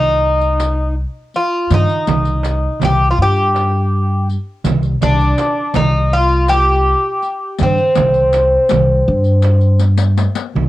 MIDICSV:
0, 0, Header, 1, 7, 480
1, 0, Start_track
1, 0, Tempo, 737101
1, 1113, Time_signature, 4, 2, 24, 8
1, 6959, End_track
2, 0, Start_track
2, 0, Title_t, "Bouzouki"
2, 0, Program_c, 0, 25
2, 0, Note_on_c, 0, 63, 97
2, 607, Note_off_c, 0, 63, 0
2, 884, Note_on_c, 0, 65, 81
2, 1126, Note_off_c, 0, 65, 0
2, 1131, Note_on_c, 0, 63, 73
2, 1851, Note_off_c, 0, 63, 0
2, 1854, Note_on_c, 0, 67, 84
2, 2021, Note_off_c, 0, 67, 0
2, 2023, Note_on_c, 0, 65, 57
2, 2071, Note_off_c, 0, 65, 0
2, 2099, Note_on_c, 0, 67, 85
2, 2781, Note_off_c, 0, 67, 0
2, 3278, Note_on_c, 0, 62, 88
2, 3751, Note_off_c, 0, 62, 0
2, 3754, Note_on_c, 0, 63, 81
2, 3994, Note_on_c, 0, 65, 89
2, 4001, Note_off_c, 0, 63, 0
2, 4226, Note_off_c, 0, 65, 0
2, 4228, Note_on_c, 0, 67, 94
2, 4966, Note_on_c, 0, 60, 68
2, 4973, Note_off_c, 0, 67, 0
2, 6374, Note_off_c, 0, 60, 0
2, 6959, End_track
3, 0, Start_track
3, 0, Title_t, "Double bass"
3, 0, Program_c, 1, 43
3, 6881, Note_on_c, 1, 36, 58
3, 6959, Note_off_c, 1, 36, 0
3, 6959, End_track
4, 0, Start_track
4, 0, Title_t, "Upright bass"
4, 0, Program_c, 2, 32
4, 0, Note_on_c, 2, 36, 79
4, 670, Note_off_c, 2, 36, 0
4, 1108, Note_on_c, 2, 43, 83
4, 1205, Note_off_c, 2, 43, 0
4, 1351, Note_on_c, 2, 36, 76
4, 1730, Note_off_c, 2, 36, 0
4, 1831, Note_on_c, 2, 36, 93
4, 2021, Note_off_c, 2, 36, 0
4, 2073, Note_on_c, 2, 43, 86
4, 2830, Note_off_c, 2, 43, 0
4, 3025, Note_on_c, 2, 36, 84
4, 3217, Note_off_c, 2, 36, 0
4, 3275, Note_on_c, 2, 36, 86
4, 3464, Note_off_c, 2, 36, 0
4, 3752, Note_on_c, 2, 36, 88
4, 4509, Note_off_c, 2, 36, 0
4, 4957, Note_on_c, 2, 43, 86
4, 5050, Note_off_c, 2, 43, 0
4, 5198, Note_on_c, 2, 36, 80
4, 5575, Note_off_c, 2, 36, 0
4, 5674, Note_on_c, 2, 36, 93
4, 5863, Note_off_c, 2, 36, 0
4, 5912, Note_on_c, 2, 43, 97
4, 6669, Note_off_c, 2, 43, 0
4, 6872, Note_on_c, 2, 36, 72
4, 6959, Note_off_c, 2, 36, 0
4, 6959, End_track
5, 0, Start_track
5, 0, Title_t, "Darbuka"
5, 390, Note_on_c, 9, 63, 58
5, 455, Note_off_c, 9, 63, 0
5, 515, Note_on_c, 9, 62, 19
5, 580, Note_off_c, 9, 62, 0
5, 1113, Note_on_c, 9, 64, 81
5, 1178, Note_off_c, 9, 64, 0
5, 1350, Note_on_c, 9, 64, 79
5, 1415, Note_off_c, 9, 64, 0
5, 1467, Note_on_c, 9, 62, 24
5, 1532, Note_off_c, 9, 62, 0
5, 1584, Note_on_c, 9, 63, 76
5, 1649, Note_off_c, 9, 63, 0
5, 1822, Note_on_c, 9, 64, 76
5, 1887, Note_off_c, 9, 64, 0
5, 2310, Note_on_c, 9, 63, 54
5, 2375, Note_off_c, 9, 63, 0
5, 2431, Note_on_c, 9, 62, 22
5, 2496, Note_off_c, 9, 62, 0
5, 3025, Note_on_c, 9, 64, 95
5, 3090, Note_off_c, 9, 64, 0
5, 3266, Note_on_c, 9, 64, 89
5, 3331, Note_off_c, 9, 64, 0
5, 3504, Note_on_c, 9, 63, 75
5, 3570, Note_off_c, 9, 63, 0
5, 3737, Note_on_c, 9, 64, 89
5, 3802, Note_off_c, 9, 64, 0
5, 4226, Note_on_c, 9, 63, 55
5, 4291, Note_off_c, 9, 63, 0
5, 4349, Note_on_c, 9, 62, 25
5, 4414, Note_off_c, 9, 62, 0
5, 4945, Note_on_c, 9, 64, 88
5, 5010, Note_off_c, 9, 64, 0
5, 5069, Note_on_c, 9, 62, 23
5, 5135, Note_off_c, 9, 62, 0
5, 5184, Note_on_c, 9, 64, 85
5, 5249, Note_off_c, 9, 64, 0
5, 5430, Note_on_c, 9, 63, 67
5, 5495, Note_off_c, 9, 63, 0
5, 5672, Note_on_c, 9, 64, 80
5, 5737, Note_off_c, 9, 64, 0
5, 6146, Note_on_c, 9, 63, 58
5, 6211, Note_off_c, 9, 63, 0
5, 6391, Note_on_c, 9, 63, 58
5, 6456, Note_off_c, 9, 63, 0
5, 6511, Note_on_c, 9, 62, 62
5, 6576, Note_off_c, 9, 62, 0
5, 6632, Note_on_c, 9, 63, 75
5, 6697, Note_off_c, 9, 63, 0
5, 6756, Note_on_c, 9, 62, 73
5, 6821, Note_off_c, 9, 62, 0
5, 6877, Note_on_c, 9, 64, 86
5, 6942, Note_off_c, 9, 64, 0
5, 6959, End_track
6, 0, Start_track
6, 0, Title_t, "Frame drum"
6, 392, Note_on_c, 9, 64, 62
6, 457, Note_off_c, 9, 64, 0
6, 1120, Note_on_c, 9, 64, 77
6, 1186, Note_off_c, 9, 64, 0
6, 1357, Note_on_c, 9, 64, 81
6, 1422, Note_off_c, 9, 64, 0
6, 1600, Note_on_c, 9, 64, 63
6, 1665, Note_off_c, 9, 64, 0
6, 1842, Note_on_c, 9, 64, 95
6, 1907, Note_off_c, 9, 64, 0
6, 2320, Note_on_c, 9, 64, 65
6, 2385, Note_off_c, 9, 64, 0
6, 3038, Note_on_c, 9, 64, 87
6, 3103, Note_off_c, 9, 64, 0
6, 3274, Note_on_c, 9, 64, 82
6, 3340, Note_off_c, 9, 64, 0
6, 3513, Note_on_c, 9, 64, 68
6, 3579, Note_off_c, 9, 64, 0
6, 3748, Note_on_c, 9, 64, 90
6, 3813, Note_off_c, 9, 64, 0
6, 4236, Note_on_c, 9, 64, 66
6, 4301, Note_off_c, 9, 64, 0
6, 4955, Note_on_c, 9, 64, 73
6, 5020, Note_off_c, 9, 64, 0
6, 5192, Note_on_c, 9, 64, 88
6, 5258, Note_off_c, 9, 64, 0
6, 5431, Note_on_c, 9, 64, 66
6, 5496, Note_off_c, 9, 64, 0
6, 5670, Note_on_c, 9, 64, 89
6, 5736, Note_off_c, 9, 64, 0
6, 6150, Note_on_c, 9, 64, 65
6, 6215, Note_off_c, 9, 64, 0
6, 6877, Note_on_c, 9, 64, 68
6, 6943, Note_off_c, 9, 64, 0
6, 6959, End_track
7, 0, Start_track
7, 0, Title_t, "Riq"
7, 269, Note_on_c, 9, 54, 18
7, 334, Note_off_c, 9, 54, 0
7, 389, Note_on_c, 9, 54, 52
7, 454, Note_off_c, 9, 54, 0
7, 872, Note_on_c, 9, 54, 20
7, 937, Note_off_c, 9, 54, 0
7, 1110, Note_on_c, 9, 54, 56
7, 1175, Note_off_c, 9, 54, 0
7, 1233, Note_on_c, 9, 54, 20
7, 1298, Note_off_c, 9, 54, 0
7, 1349, Note_on_c, 9, 54, 53
7, 1414, Note_off_c, 9, 54, 0
7, 1466, Note_on_c, 9, 54, 19
7, 1531, Note_off_c, 9, 54, 0
7, 1592, Note_on_c, 9, 54, 47
7, 1657, Note_off_c, 9, 54, 0
7, 1834, Note_on_c, 9, 54, 58
7, 1899, Note_off_c, 9, 54, 0
7, 2191, Note_on_c, 9, 54, 17
7, 2256, Note_off_c, 9, 54, 0
7, 2318, Note_on_c, 9, 54, 45
7, 2383, Note_off_c, 9, 54, 0
7, 2798, Note_on_c, 9, 54, 18
7, 2863, Note_off_c, 9, 54, 0
7, 3027, Note_on_c, 9, 54, 58
7, 3092, Note_off_c, 9, 54, 0
7, 3144, Note_on_c, 9, 54, 17
7, 3209, Note_off_c, 9, 54, 0
7, 3269, Note_on_c, 9, 54, 52
7, 3335, Note_off_c, 9, 54, 0
7, 3393, Note_on_c, 9, 54, 16
7, 3459, Note_off_c, 9, 54, 0
7, 3505, Note_on_c, 9, 54, 47
7, 3570, Note_off_c, 9, 54, 0
7, 3740, Note_on_c, 9, 54, 57
7, 3805, Note_off_c, 9, 54, 0
7, 4106, Note_on_c, 9, 54, 14
7, 4171, Note_off_c, 9, 54, 0
7, 4221, Note_on_c, 9, 54, 51
7, 4286, Note_off_c, 9, 54, 0
7, 4703, Note_on_c, 9, 54, 16
7, 4768, Note_off_c, 9, 54, 0
7, 4939, Note_on_c, 9, 54, 57
7, 5004, Note_off_c, 9, 54, 0
7, 5065, Note_on_c, 9, 54, 13
7, 5130, Note_off_c, 9, 54, 0
7, 5179, Note_on_c, 9, 54, 67
7, 5244, Note_off_c, 9, 54, 0
7, 5300, Note_on_c, 9, 54, 16
7, 5365, Note_off_c, 9, 54, 0
7, 5423, Note_on_c, 9, 54, 54
7, 5488, Note_off_c, 9, 54, 0
7, 5660, Note_on_c, 9, 54, 67
7, 5725, Note_off_c, 9, 54, 0
7, 6017, Note_on_c, 9, 54, 13
7, 6083, Note_off_c, 9, 54, 0
7, 6136, Note_on_c, 9, 54, 46
7, 6201, Note_off_c, 9, 54, 0
7, 6257, Note_on_c, 9, 54, 15
7, 6322, Note_off_c, 9, 54, 0
7, 6377, Note_on_c, 9, 54, 50
7, 6442, Note_off_c, 9, 54, 0
7, 6494, Note_on_c, 9, 54, 67
7, 6559, Note_off_c, 9, 54, 0
7, 6624, Note_on_c, 9, 54, 64
7, 6689, Note_off_c, 9, 54, 0
7, 6741, Note_on_c, 9, 54, 76
7, 6806, Note_off_c, 9, 54, 0
7, 6959, End_track
0, 0, End_of_file